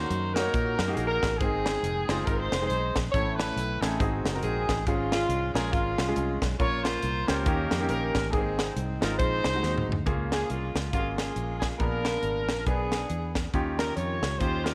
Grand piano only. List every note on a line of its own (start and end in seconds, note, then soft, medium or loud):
0.00 0.32 D#3 medium
0.00 0.11 A#3 medium
0.00 0.11 D#4 medium
0.00 0.12 F#4 medium
0.00 0.12 A#4 medium
0.35 0.71 A#3 medium
0.35 0.71 D#4 medium
0.35 0.72 F#4 medium
0.35 0.72 C#5 medium
0.87 1.26 A#3 medium
0.87 1.26 D#4 medium
0.87 1.26 F#4 medium
0.87 0.93 G4 medium
0.94 1.29 G#4 medium
1.41 2.06 G#2 medium
1.41 1.85 G#3 medium
1.41 1.85 C4 medium
1.41 1.85 D#4 medium
1.41 1.85 G#4 medium
2.10 2.45 G#3 medium
2.10 2.45 C4 medium
2.10 2.45 D#4 medium
2.10 2.45 F4 loud
2.61 2.99 G#3 medium
2.61 2.99 C4 medium
2.61 3.00 D#4 medium
2.61 3.00 G#4 medium
3.14 3.79 A2 medium
3.14 3.57 A3 medium
3.14 3.58 C#4 medium
3.14 3.58 E4 medium
3.14 3.58 A4 medium
3.83 4.01 A3 medium
3.83 4.01 C#4 medium
3.83 4.01 E4 medium
3.83 4.01 A4 medium
4.00 4.65 G#2 medium
4.00 4.29 C4 medium
4.00 4.29 D#4 medium
4.00 4.30 F#4 medium
4.00 4.30 G#4 medium
4.34 4.72 C4 medium
4.34 4.72 D#4 medium
4.34 4.73 F#4 medium
4.34 4.73 A#4 medium
4.87 5.52 G#2 medium
4.87 5.31 G#3 medium
4.87 5.31 C#4 medium
4.87 5.31 F4 medium
4.87 5.31 G#4 medium
5.55 5.90 G#3 medium
5.55 5.91 C#4 medium
5.55 5.91 F4 medium
5.55 5.91 A#4 medium
6.08 6.46 G#3 medium
6.08 6.45 C#4 medium
6.08 6.46 F4 medium
6.08 6.46 G#4 medium
6.60 7.25 A#2 medium
6.60 7.04 A#3 medium
6.60 7.04 C#4 medium
6.60 7.04 F4 medium
6.60 7.04 A#4 medium
7.27 7.44 A#3 medium
7.27 7.45 C#4 medium
7.27 7.46 F4 medium
7.27 7.47 C5 medium
7.46 8.11 D#3 medium
7.46 7.75 A#3 medium
7.46 7.75 C#4 medium
7.46 7.76 D#4 medium
7.46 7.76 G4 medium
7.80 8.18 A#3 medium
7.80 8.18 C#4 medium
7.80 8.19 D#4 medium
7.80 8.18 G4 medium
8.32 8.98 G#2 medium
8.32 8.76 G#3 medium
8.32 8.39 A#3 medium
8.32 8.77 D#4 medium
8.32 8.77 G#4 medium
8.38 8.79 C4 medium
9.01 9.37 G#3 medium
9.01 9.37 C4 medium
9.01 9.37 D#4 medium
9.01 9.37 F4 medium
9.54 9.91 G#3 medium
9.54 9.92 C4 medium
9.54 9.92 D#4 medium
9.54 9.92 F#4 medium
10.06 10.71 C#3 medium
10.06 10.67 A#3 medium
10.06 10.67 C#4 medium
10.06 10.68 F4 medium
10.06 10.68 G#4 medium
10.93 11.54 A#3 medium
10.93 11.54 C#4 medium
10.93 11.55 F4 medium
10.93 11.00 F#4 medium
10.99 11.57 G#4 medium
11.80 12.45 A#2 medium
11.80 12.41 B3 medium
11.80 12.41 D4 medium
11.80 12.41 G#4 medium
11.80 12.41 A#4 medium
12.66 13.28 B3 medium
12.66 13.28 D4 medium
12.66 13.28 G#4 medium
12.66 13.28 B4 medium
13.54 14.19 D#3 medium
13.54 14.15 C#4 medium
13.54 14.15 D#4 medium
13.54 14.15 F4 medium
13.54 14.15 G4 medium
14.40 14.74 C#4 medium
14.40 14.74 D#4 medium
14.40 14.74 F4 medium
14.40 14.74 G4 medium